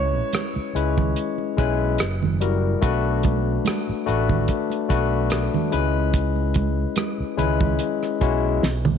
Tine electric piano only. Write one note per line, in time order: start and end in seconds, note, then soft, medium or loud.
0.00 0.52 G#3 medium
0.00 0.53 C#4 medium
0.00 0.53 E4 medium
0.00 0.53 B4 medium
0.74 1.47 G#3 medium
0.74 1.47 C#4 medium
0.74 1.47 E4 medium
0.74 1.48 B4 medium
1.57 1.99 G#3 medium
1.57 1.99 C#4 medium
1.57 2.00 E4 medium
1.57 2.00 B4 medium
2.40 2.77 G3 medium
2.40 2.77 E4 medium
2.40 2.77 F#4 medium
2.40 2.77 A#4 medium
2.81 3.90 A3 loud
2.81 3.90 D4 medium
2.81 3.91 F#4 medium
2.81 3.91 B4 loud
4.06 4.79 A3 medium
4.06 4.79 D4 medium
4.06 4.79 F#4 medium
4.06 4.79 B4 medium
4.89 5.72 A3 medium
4.89 5.72 D4 medium
4.89 5.73 F#4 medium
4.89 5.72 B4 medium
5.71 7.16 G#3 medium
5.71 7.16 C#4 medium
5.71 7.16 E4 medium
5.71 7.17 B4 medium
7.37 8.10 G#3 medium
7.37 8.10 C#4 medium
7.37 8.10 E4 medium
7.37 8.11 B4 medium
8.21 8.62 G#3 medium
8.21 8.63 C#4 medium
8.21 8.63 E4 medium
8.21 8.63 F#4 medium